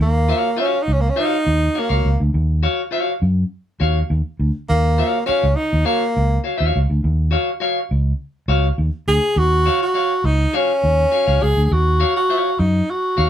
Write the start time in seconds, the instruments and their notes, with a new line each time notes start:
0.00 fingered electric bass D#2, tenor saxophone A#3
0.28 clean electric guitar F#4 C#5 F5
0.57 tenor saxophone C#4, clean electric guitar F#4 C#5 F5
0.82 tenor saxophone D#4
0.88 fingered electric bass C#2
0.93 tenor saxophone C#4
1.00 tenor saxophone A#3
1.09 tenor saxophone C#4
1.16 tenor saxophone D#4, clean electric guitar F#4 C#5 F5
1.47 fingered electric bass D#2
1.75 clean electric guitar F#4 C#5 F5
1.79 tenor saxophone A#3
1.89 fingered electric bass C#2, clean electric guitar F#4 C#5 F5
2.05 fingered electric bass C#2
2.20 fingered electric bass D2
2.34 fingered electric bass D#2
2.63 clean electric guitar F#4 C#5 F5
2.91 clean electric guitar F#4 C#5 F5
3.22 fingered electric bass F#2
3.80 fingered electric bass D#2, clean electric guitar F#4 C#5 F5
4.10 fingered electric bass D#2
4.39 fingered electric bass D2
4.69 fingered electric bass D#2, tenor saxophone A#3
4.98 clean electric guitar F#4 C#5 F5
5.26 tenor saxophone C#4, clean electric guitar F#4 C#5 F5, muted fingered electric bass stroke
5.43 fingered electric bass C#2
5.56 tenor saxophone D#4
5.73 fingered electric bass D#2
5.85 tenor saxophone A#3, clean electric guitar F#4 C#5 F5
6.17 fingered electric bass C#2
6.44 clean electric guitar F#4 C#5 F5
6.58 fingered electric bass D#2, clean electric guitar F#4 C#5 F5
6.76 fingered electric bass C#2
6.90 fingered electric bass D2
7.04 fingered electric bass D#2
7.31 clean electric guitar F#4 C#5 F5
7.60 clean electric guitar F#4 C#5 F5
7.91 fingered electric bass C#2
8.48 fingered electric bass C#2, clean electric guitar F#4 C#5 F5
8.78 fingered electric bass D#2
9.08 fingered electric bass D2, tenor saxophone G#4
9.36 fingered electric bass D#2, tenor saxophone F#4
9.66 clean electric guitar F#4 C#5 F5
9.82 tenor saxophone F#4
9.94 clean electric guitar F#4 C#5 F5
10.24 fingered electric bass C#2, tenor saxophone D#4
10.53 tenor saxophone C#4, clean electric guitar F#4 C#5 F5
10.84 fingered electric bass D#2
11.12 clean electric guitar F#4 C#5 F5
11.27 fingered electric bass C#2, clean electric guitar F#4 C#5 F5
11.42 fingered electric bass C#2, tenor saxophone G#4
11.57 fingered electric bass D2
11.64 tenor saxophone G#4
11.71 fingered electric bass D#2, tenor saxophone F#4
12.00 clean electric guitar F#4 C#5 F5
12.16 tenor saxophone F#4
12.29 clean electric guitar F#4 C#5 F5
12.59 fingered electric bass F#2, tenor saxophone D#4
12.90 tenor saxophone F#4
13.17 fingered electric bass D#2, clean electric guitar F#4 C#5 F5